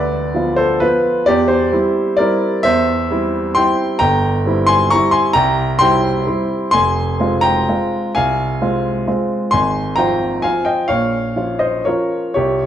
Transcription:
Already playing: D2 B4 D5
0.34 F3 B3 F4
0.56 A4 C5
0.80 F3 B3 F4 B4
1.26 E2 G4 D5
1.48 G4 C5
1.72 G3 C4 E4
2.17 G3 C4 E4 A#4 D5
2.63 E2 C5 E5
3.11 G3 C4 E4
3.55 G3 C4 E4 G5 C6
3.99 G1 G5 A#5
4.46 G3 C4 E4
4.67 G#5 C6
4.90 G3 C4 E4 A#5 C#6
5.11 G#5 C6
5.33 C2 G5 A#5
5.79 G3 C4 E4 G5 C6
6.27 G3 C4 E4
6.71 F1 G#5 C6
7.20 G#3 C4 F4
7.41 G5 A#5
7.69 G#3 C4 F4
8.15 C2 F5 G#5
8.62 G#3 C4 F4
9.07 G#3 C4 F4
9.51 G#1 G#5 C6
9.96 F3 C4 F4 G5 A#5
10.42 F3 C4 F4 F5 G#5
10.65 D#5 G5
10.88 A#1 C#5 F5
11.36 F3 C#4 F4
11.59 C5 D#5
11.85 F3 C#4 F4 A#4 C#5
12.34 C2 G4 C#5

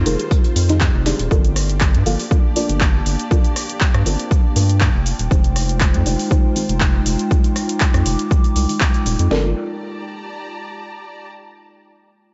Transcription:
Already playing: C4 D#4 F4 C5
0.06 F1 D#4 G4 G#4 A#4, open hi-hat, tambourine, shaker
0.20 closed hi-hat, shaker
0.31 kick, tambourine, shaker
0.44 closed hi-hat, shaker
0.56 F2, open hi-hat, tambourine, shaker
0.69 D#4 G4 G#4 D#5, snare, closed hi-hat, shaker
0.81 kick, snare, clap, tambourine, shaker
0.94 F1
1.06 D#4 G4 G#4 D5, snare, open hi-hat, tambourine, shaker
1.19 D#1, closed hi-hat, shaker
1.31 G1 A#3 D4 F4 G4 A4 A#4 D5 A5, kick, shaker
1.45 closed hi-hat, shaker
1.56 cross-stick, open hi-hat, shaker
1.70 D5, closed hi-hat, shaker
1.81 kick, clap, shaker
1.94 G2, closed hi-hat
2.06 G1 F4 A4 A#4 F5, open hi-hat, shaker
2.20 open hi-hat, shaker
2.31 F4 A4 A#4 D5, kick, shaker
2.56 F4 A4 A#4 D5, open hi-hat, shaker
2.69 G1, closed hi-hat, shaker
2.81 kick, clap, shaker
3.06 G1, open hi-hat, shaker
3.19 closed hi-hat, shaker
3.31 F4 A4 A#4 D5 G5, kick, shaker
3.45 closed hi-hat, shaker
3.56 cross-stick, open hi-hat, shaker
3.69 closed hi-hat, shaker
3.81 kick, clap, shaker
3.94 G2, cross-stick, closed hi-hat
4.06 G1 F4 A4 A#4 C5, open hi-hat, shaker
4.19 closed hi-hat, shaker
4.31 kick, shaker
4.56 G2 F4 A4 A#4 F5, open hi-hat, shaker
4.69 closed hi-hat, shaker
4.81 kick, clap, shaker
4.94 F1
5.06 G#3 D#4 F4 C5, open hi-hat, shaker
5.19 D#1, closed hi-hat, shaker
5.24 C5
5.31 F1 D#4 G4 G#4 C5, kick, shaker
5.44 closed hi-hat, shaker
5.56 cross-stick, open hi-hat, shaker
5.69 closed hi-hat, shaker
5.81 kick, clap, shaker
5.94 F2, closed hi-hat
6.06 F1 D#4 G4 G#4 D5, open hi-hat, shaker
6.19 open hi-hat, shaker
6.31 D#4 G4 G#4 C5, kick, shaker
6.56 D#4 G4 G#4 C5, open hi-hat, shaker
6.69 F1, closed hi-hat, shaker
6.80 kick, clap, shaker
7.06 F1 D6, open hi-hat, shaker
7.19 closed hi-hat, shaker
7.31 D#4 G4 G#4 C5, kick, shaker
7.44 closed hi-hat, shaker
7.56 cross-stick, open hi-hat, shaker
7.69 closed hi-hat, shaker
7.80 kick, clap, shaker
7.94 F2, cross-stick, closed hi-hat, shaker
8.06 F1 D#4 G4 G#4 A#4, open hi-hat, shaker
8.19 closed hi-hat, shaker
8.31 kick, shaker
8.44 closed hi-hat, shaker
8.56 C2, open hi-hat, shaker
8.69 D#4 G4 G#4 D#5, open hi-hat, shaker
8.81 kick, clap, shaker
8.94 closed hi-hat, shaker
9.06 D#1 D#4 G4 G#4 D5, open hi-hat, shaker
9.19 F2, closed hi-hat, shaker
9.31 G1 F4 G4 A4 A#4 D5, snare
9.39 D5
9.47 A5
9.53 A#5

